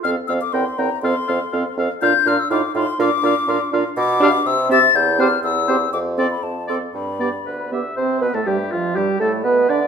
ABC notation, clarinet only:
X:1
M:2/4
L:1/16
Q:1/4=122
K:F
V:1 name="Clarinet"
A2 A2 B2 B2 | A2 A2 A2 A2 | F2 F2 F2 F2 | F2 F2 F2 F2 |
[K:Gmix] z2 G z3 G z | z2 G z3 G z | z2 A z3 A z | z2 G z3 G z |
C2 B, A, G,2 F,2 | G,2 A,2 B,2 D2 |]